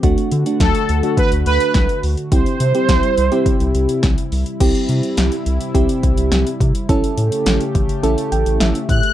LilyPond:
<<
  \new Staff \with { instrumentName = "Analog polysynth" } { \time 4/4 \key c \lydian \tempo 4 = 105 r4 a'4 b'8 b'4 r8 | c''2. r4 | r1 | r2. r8 fis'''8 | }
  \new Staff \with { instrumentName = "FM electric piano" } { \time 4/4 \key c \lydian << { r1 | r1 | r1 | r2 r8 g''8 e''4 | } \\ { <a d' fis'>8 r16 <a d' fis'>8. r16 <a d' fis'>4~ <a d' fis'>16 r4 | <c' e' g'>8 r16 <c' e' g'>8. r16 <c' e' g'>4~ <c' e' g'>16 r4 | <c' e' g'>4~ <c' e' g'>16 r8. <c' e' g'>4~ <c' e' g'>16 r8. | <cis' e' a'>4~ <cis' e' a'>16 r8. <cis' e' a'>4~ <cis' e' a'>16 r8. | } >> }
  \new Staff \with { instrumentName = "Analog synth pad" } { \clef bass \time 4/4 \key c \lydian <d a fis'>1 | <c g e'>1 | <c g e'>1 | <cis a g'>1 | }
  \new Staff \with { instrumentName = "Analog synth bass" } { \clef bass \time 4/4 \key c \lydian d,16 r16 d16 r16 d,16 r16 d,16 r8 d,16 d,16 r16 c,16 r16 d,16 r16 | c,16 r16 c16 r16 c,16 r16 c,16 r8 c,16 c,16 r16 b,,16 r16 c,16 r16 | c,16 r16 c16 r16 c,16 r16 c,16 r16 c,16 r16 c,16 c,16 c,16 r16 c16 r16 | a,,16 r16 a,16 r16 a,,16 r16 a,,16 r16 a,,16 r16 a,,16 a,,16 a,,16 r16 a,16 r16 | }
  \new DrumStaff \with { instrumentName = "Drums" } \drummode { \time 4/4 <hh bd>16 hh16 hh16 hh16 <hh bd sn>16 hh16 hh16 hh16 <hh bd>16 hh16 hh16 hh16 <hh bd sn>16 hh16 hho16 hh16 | <hh bd>16 hh16 hh16 hh16 <hh bd sn>16 hh16 hh16 hh16 <hh bd>16 hh16 hh16 hh16 <hh bd sn>16 hh16 hho16 hh16 | <cymc hh bd>16 hh16 hh16 hh16 <hh sn>16 hh16 hh16 hh16 <hh bd>16 hh16 <hh bd>16 hh16 <hh sn>16 hh16 <hh bd>16 hh16 | <hh bd>16 hh16 hh16 hh16 <hh sn>16 hh16 <hh bd>16 hh16 hh16 hh16 hh16 hh16 <hh sn>16 hh16 <hh bd>16 hh16 | }
>>